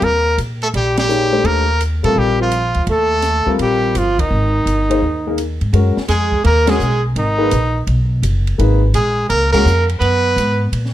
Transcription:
0.02 0.35 D#2 medium
0.02 0.38 A#3 medium
0.02 0.38 A#4 loud
0.02 ride soft
0.38 0.71 A#2 medium
0.38 hi-hat pedal soft
0.38 ride medium
0.62 0.68 A3 medium
0.62 0.68 A4 medium
0.62 ride soft
0.74 1.41 A#1 medium
0.74 0.96 G3 medium
0.74 0.97 G4 medium
0.74 ride medium
0.97 1.46 G3 medium
0.97 1.47 G4 medium
0.97 snare medium
0.97 ride medium
1.08 1.29 A#3 medium
1.08 1.30 D#4 medium
1.08 1.30 G#4 soft
1.08 1.30 C#5 medium
1.08 hi-hat pedal medium
1.31 1.63 A3 medium
1.31 1.63 D4 medium
1.31 1.63 G4 soft
1.31 1.63 C5 medium
1.44 2.00 D#2 medium
1.44 1.80 A#3 medium
1.44 1.81 A#4 loud
1.44 ride medium
1.81 hi-hat pedal medium
1.81 ride medium
2.03 2.15 A#2 medium
2.03 2.49 G3 medium
2.03 2.18 A3 medium
2.03 2.49 C4 medium
2.03 2.49 F4 medium
2.03 2.20 A4 medium
2.03 2.49 A#4 medium
2.03 ride medium
2.16 2.71 A#1 medium
2.16 2.39 G3 medium
2.16 2.41 G4 medium
2.40 2.84 F3 medium
2.40 2.86 F4 medium
2.52 hi-hat pedal medium
2.52 ride medium
2.74 2.86 D2 medium
2.74 ride soft
2.87 3.42 D#2 medium
2.87 3.56 A3 medium
2.87 ride medium
2.92 3.57 A4 loud
3.22 snare soft
3.22 hi-hat pedal medium
3.22 ride medium
3.46 3.92 G3 medium
3.46 3.92 C4 medium
3.46 3.92 F4 medium
3.46 3.92 A#4 medium
3.46 muted upright bass stroke soft
3.46 kick soft
3.59 3.92 A#1 medium
3.59 3.97 G3 medium
3.59 3.99 G4 medium
3.59 ride medium
3.95 4.28 G1 medium
3.95 4.21 F3 medium
3.95 4.21 F4 medium
3.95 hi-hat pedal medium
3.95 ride medium
4.19 5.38 D#3 medium
4.19 5.38 D#4 medium
4.19 kick medium
4.19 ride medium
4.31 4.64 G#1 medium
4.66 4.99 G1 medium
4.66 hi-hat pedal soft
4.66 ride medium
4.89 5.01 A#3 medium
4.89 5.01 D#4 medium
4.89 5.01 G#4 medium
4.89 5.01 C5 medium
4.89 ride medium
5.02 5.57 D#2 medium
5.27 5.37 A#3 medium
5.27 5.37 D#4 medium
5.27 5.37 G#4 soft
5.27 5.37 A#4 medium
5.38 hi-hat pedal soft
5.38 ride medium
5.61 5.72 G#2 medium
5.61 ride soft
5.73 5.95 F#2 medium
5.73 5.94 G#3 medium
5.73 5.95 C#4 medium
5.73 5.95 F#4 medium
5.73 5.95 A#4 medium
5.73 ride medium
5.97 muted upright bass stroke soft
5.97 snare medium
6.08 6.43 F2 medium
6.08 6.42 G#3 medium
6.08 6.43 G#4 loud
6.08 snare soft
6.08 hi-hat pedal medium
6.08 ride medium
6.32 kick medium
6.44 6.79 D#2 medium
6.44 6.68 A#3 medium
6.44 6.71 A#4 loud
6.44 ride medium
6.66 6.78 G#3 medium
6.66 7.03 G#3 medium
6.66 6.78 C#4 medium
6.66 6.78 F#4 medium
6.66 7.04 G#4 medium
6.66 6.78 A#4 medium
6.66 snare medium
6.66 ride medium
6.80 7.15 B1 medium
6.80 hi-hat pedal medium
7.16 7.50 G#1 medium
7.16 7.84 D#3 medium
7.16 7.85 D#4 medium
7.16 ride medium
7.38 7.50 A#3 medium
7.38 7.50 D#4 medium
7.38 7.50 G#4 medium
7.38 7.50 B4 medium
7.51 7.86 A#1 medium
7.51 hi-hat pedal medium
7.51 ride medium
7.87 8.22 B1 medium
7.87 ride medium
8.22 8.57 F#1 medium
8.22 hi-hat pedal medium
8.22 ride medium
8.47 ride soft
8.58 8.93 G#1 medium
8.58 8.79 A#3 medium
8.58 8.79 D#4 medium
8.58 8.80 G#4 medium
8.58 8.80 B4 medium
8.58 ride medium
8.94 9.29 A#1 medium
8.94 9.27 G#3 medium
8.94 9.28 G#4 medium
8.94 hi-hat pedal medium
8.94 ride medium
9.29 9.64 C#2 medium
9.29 9.51 A#3 medium
9.29 9.51 A#4 loud
9.29 ride medium
9.52 9.64 G#3 medium
9.52 9.86 A#3 medium
9.52 9.64 C#4 medium
9.52 9.65 F#4 medium
9.52 9.65 G#4 medium
9.52 9.86 A#4 loud
9.52 kick medium
9.52 crash medium
9.65 10.00 F2 medium
9.65 hi-hat pedal medium
9.89 ride soft
10.00 10.35 F#2 medium
10.00 10.68 B3 medium
10.00 10.68 B4 loud
10.00 ride medium
10.36 10.71 G#2 medium
10.36 hi-hat pedal soft
10.36 ride medium
10.72 10.94 A#2 medium
10.72 ride medium
10.86 snare soft

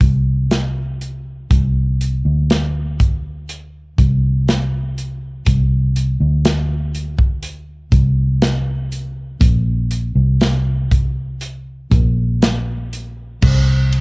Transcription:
0.01 1.47 C2 medium
0.01 kick medium
0.01 closed hi-hat medium
0.51 snare medium
0.51 closed hi-hat medium
1.01 closed hi-hat medium
1.51 2.21 C2 medium
1.51 kick medium
1.51 closed hi-hat medium
2.01 closed hi-hat medium
2.25 3.94 D2 medium
2.50 snare medium
2.50 closed hi-hat medium
3.00 kick medium
3.00 closed hi-hat medium
3.49 closed hi-hat medium
3.98 5.43 C2 medium
3.98 kick medium
3.98 closed hi-hat medium
4.48 snare medium
4.48 closed hi-hat medium
4.98 closed hi-hat medium
5.46 6.16 C2 medium
5.46 kick medium
5.46 closed hi-hat loud
5.96 closed hi-hat medium
6.20 7.88 D2 medium
6.45 snare loud
6.45 closed hi-hat medium
6.95 closed hi-hat medium
7.19 kick medium
7.43 closed hi-hat medium
7.92 9.37 C2 medium
7.92 kick medium
7.92 closed hi-hat medium
8.42 snare loud
8.42 closed hi-hat medium
8.92 closed hi-hat medium
9.41 10.12 A#1 medium
9.41 kick loud
9.41 closed hi-hat loud
9.91 closed hi-hat medium
10.15 11.87 C2 medium
10.41 snare medium
10.41 closed hi-hat medium
10.91 kick medium
10.91 closed hi-hat medium
11.41 closed hi-hat medium
11.91 13.38 A#1 loud
11.91 kick medium
11.91 closed hi-hat medium
12.42 snare loud
12.42 closed hi-hat medium
12.93 closed hi-hat medium
13.42 14.01 C2 medium
13.42 kick loud
13.42 crash loud
13.92 ride medium

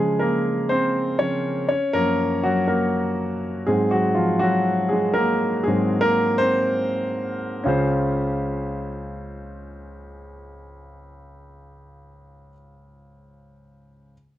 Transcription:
0.00 1.18 C#3 soft
0.00 1.18 F3 soft
0.00 1.72 G#3 medium
0.00 1.71 G#4 medium
0.19 0.68 A#3 medium
0.19 0.72 A#4 medium
0.69 1.17 C4 medium
0.69 1.21 C5 medium
1.19 1.42 C#3 soft
1.19 1.43 F3 soft
1.19 1.43 C4 soft
1.19 1.67 C#4 medium
1.19 1.67 C#5 medium
1.69 1.94 C#4 medium
1.69 1.95 C#5 medium
1.93 2.65 F#2 soft
1.93 2.65 F3 soft
1.93 2.41 A#3 medium
1.93 2.45 A#4 loud
2.43 2.68 F#3 medium
2.43 2.70 F#4 medium
2.68 3.40 A#3 medium
2.68 3.39 A#4 medium
3.67 4.39 G#2 soft
3.67 3.92 F#3 soft
3.67 3.92 G#3 medium
3.67 4.39 C4 medium
3.67 3.93 G#4 medium
3.91 4.17 F#3 medium
3.91 4.15 F#4 medium
4.15 4.41 F3 medium
4.15 4.42 F4 medium
4.39 4.89 F#3 medium
4.39 4.92 F#4 medium
4.89 4.95 G#4 medium
4.93 4.98 G#3 medium
5.14 5.67 A#4 medium
5.18 5.64 A#3 medium
5.64 6.00 G#2 soft
5.64 6.00 F#3 soft
5.64 6.00 C4 medium
5.64 6.00 G#4 medium
5.68 6.02 G#3 medium
6.01 6.41 A#4 loud
6.05 6.39 A#3 medium
6.38 7.37 C4 medium
6.38 7.35 C5 loud
7.64 12.51 C#2 medium
7.64 12.49 C#4 medium
7.64 12.51 F4 medium
7.64 12.52 G#4 medium
7.68 12.53 C5 medium

